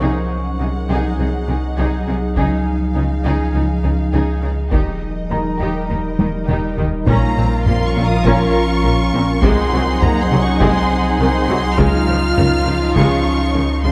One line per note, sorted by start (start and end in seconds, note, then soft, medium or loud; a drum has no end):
0.00 0.09 C2 soft
0.00 2.38 C2 medium
0.00 0.09 C3 soft
0.00 2.36 F#3 medium
0.00 4.70 D#4 medium
0.00 0.29 D#4 medium
0.00 4.72 G#4 medium
0.00 0.29 G#4 medium
0.00 1.45 C#5 soft
0.00 4.70 D#5 medium
0.00 0.27 F5 soft
0.00 2.37 F#5 soft
0.00 1.45 C#6 soft
0.00 0.27 F6 soft
0.60 0.68 C2 soft
0.60 0.68 C3 soft
0.60 0.68 D#4 soft
0.60 0.69 G#4 soft
0.89 0.97 C2 medium
0.89 0.97 C3 medium
0.89 1.17 D#4 soft
0.89 1.17 G#4 medium
1.19 1.27 C2 soft
1.19 1.27 C3 soft
1.19 1.27 D#4 soft
1.19 1.27 G#4 soft
1.48 1.56 C2 soft
1.48 1.56 C3 soft
1.48 1.57 D#4 soft
1.48 1.57 G#4 soft
1.77 1.85 C2 medium
1.77 1.86 C3 medium
1.77 2.06 D#4 medium
1.77 2.05 G#4 medium
2.07 2.15 C2 soft
2.07 2.16 C3 soft
2.07 2.16 D#4 soft
2.07 2.15 G#4 soft
2.36 2.44 C#2 medium
2.36 4.73 C#2 medium
2.36 2.45 C#3 medium
2.36 4.72 F3 medium
2.36 2.64 D#4 medium
2.36 2.64 G#4 medium
2.36 4.68 F5 soft
2.36 4.09 G#5 soft
2.36 taiko medium
2.95 3.03 C#2 soft
2.95 3.04 C#3 soft
2.95 3.03 D#4 soft
2.95 3.03 G#4 soft
3.24 3.32 C#2 medium
3.24 3.33 C#3 medium
3.24 3.52 D#4 medium
3.24 3.52 G#4 medium
3.24 taiko soft
3.54 3.62 C#2 soft
3.54 3.63 C#3 soft
3.54 3.62 D#4 soft
3.54 3.62 G#4 soft
3.83 3.92 C#2 soft
3.83 3.92 C#3 soft
3.83 3.91 D#4 soft
3.83 3.92 G#4 soft
4.13 4.21 C#2 medium
4.13 4.21 C#3 soft
4.13 4.40 D#4 soft
4.13 4.40 G#4 soft
4.42 4.51 C#2 soft
4.42 4.50 C#3 soft
4.42 4.50 D#4 soft
4.42 4.51 G#4 soft
4.71 7.07 D#1 medium
4.71 4.80 D#2 soft
4.71 4.80 D#3 soft
4.71 7.07 G3 medium
4.71 7.03 D#4 medium
4.71 4.99 D#4 medium
4.71 4.99 G4 medium
4.71 7.07 A#4 medium
4.71 7.03 D#5 medium
4.71 6.83 D#5 soft
4.71 taiko medium
5.30 5.39 D#2 soft
5.30 5.39 D#3 soft
5.30 5.38 D#4 soft
5.30 5.40 G4 soft
5.30 7.04 A#4 soft
5.30 7.04 A#5 soft
5.60 5.68 D#2 soft
5.60 5.68 D#3 soft
5.60 5.88 D#4 soft
5.60 5.88 G4 medium
5.89 5.98 D#2 soft
5.89 5.97 D#3 soft
5.89 5.98 D#4 soft
5.89 5.97 G4 soft
6.19 6.27 D#2 soft
6.19 6.27 D#3 soft
6.19 6.28 D#4 soft
6.19 6.27 G4 soft
6.19 taiko high medium
6.48 6.56 D#2 soft
6.48 6.56 D#3 soft
6.48 6.76 D#4 medium
6.48 6.76 G4 soft
6.48 taiko mid medium
6.77 6.85 D#2 soft
6.77 6.86 D#3 soft
6.77 6.86 D#4 soft
6.77 6.86 G4 soft
6.77 taiko low medium
7.07 7.15 A#1 medium
7.07 9.44 A#1 medium
7.07 7.15 A#2 medium
7.07 9.39 F3 medium
7.07 7.63 A#3 medium
7.07 7.35 C#4 medium
7.07 9.39 F4 medium
7.07 9.39 A#4 medium
7.07 9.39 F5 medium
7.07 7.62 A#5 medium
7.07 taiko loud
7.36 7.44 A#1 medium
7.36 7.45 A#2 medium
7.36 7.45 C4 medium
7.66 7.74 A#1 medium
7.66 7.74 A#2 medium
7.66 7.75 A#3 medium
7.66 7.86 C4 medium
7.66 7.86 C6 medium
7.66 taiko low-mid medium
7.87 8.06 C#4 medium
7.87 8.06 C#6 medium
7.95 8.03 A#1 soft
7.95 8.04 A#2 medium
7.95 8.04 C4 medium
8.06 8.26 D#4 medium
8.06 8.26 D#6 medium
8.24 8.32 A#1 medium
8.24 8.33 A#2 medium
8.24 8.53 C#4 medium
8.24 9.41 C#4 medium
8.24 9.98 A#4 soft
8.24 9.99 A#5 medium
8.24 9.43 C#6 medium
8.24 taiko medium
8.84 8.92 A#1 medium
8.84 8.92 A#2 medium
8.84 8.92 A#3 medium
9.13 9.21 A#1 medium
9.13 9.21 A#2 medium
9.13 9.22 C4 medium
9.42 9.51 C2 medium
9.42 11.80 C2 medium
9.42 9.50 C3 medium
9.42 11.78 F#3 medium
9.42 9.70 G#3 medium
9.42 10.02 C4 medium
9.42 13.92 D#4 medium
9.42 11.74 G#4 medium
9.42 13.92 G#4 medium
9.42 11.74 F#5 medium
9.42 10.01 C6 medium
9.42 taiko loud
9.72 9.80 C2 medium
9.72 9.80 C3 medium
9.72 9.80 F#3 medium
10.01 10.10 C2 medium
10.01 10.09 C3 medium
10.01 10.10 D#3 medium
10.01 10.22 A#3 medium
10.01 10.21 A#5 loud
10.01 taiko low-mid medium
10.22 10.42 C4 medium
10.22 10.41 C6 medium
10.31 10.39 C2 medium
10.31 10.39 C3 medium
10.31 10.39 F#3 medium
10.42 10.61 C#4 medium
10.42 10.61 C#6 medium
10.60 10.69 C2 medium
10.60 10.68 C3 medium
10.60 10.88 G#3 medium
10.60 11.19 C4 medium
10.60 12.33 G#5 medium
10.60 11.18 C6 medium
10.60 taiko medium
11.19 11.27 C2 medium
11.19 11.27 C3 medium
11.19 11.28 D#3 medium
11.19 11.77 C4 medium
11.19 11.77 C6 loud
11.48 11.57 C2 medium
11.48 11.56 C3 medium
11.48 11.57 F#3 medium
11.77 13.92 C#2 medium
11.77 11.87 C#2 medium
11.77 11.85 C#3 medium
11.77 13.92 F3 medium
11.77 12.06 G#3 medium
11.77 12.96 F4 loud
11.77 13.92 F4 medium
11.77 13.92 C#5 medium
11.77 13.92 F5 medium
11.77 12.95 F6 loud
11.77 taiko loud
12.07 12.15 C#2 medium
12.07 12.15 C#3 medium
12.07 12.16 F3 medium
12.37 12.45 C#2 medium
12.37 12.45 C#3 medium
12.37 12.46 D#3 medium
12.37 taiko low-mid medium
12.66 12.74 C#2 medium
12.66 12.74 C#3 medium
12.66 12.76 F3 soft
12.95 13.03 C#2 medium
12.95 13.04 C#3 medium
12.95 13.23 G#3 medium
12.95 13.84 C#4 medium
12.95 13.82 C#6 loud
12.95 taiko medium
13.54 13.63 C#2 medium
13.54 13.63 C#3 soft
13.54 13.62 D#3 soft
13.84 13.92 C#2 medium
13.84 13.92 C#3 soft
13.84 13.92 F3 medium
13.84 13.92 C4 medium
13.84 13.92 C6 medium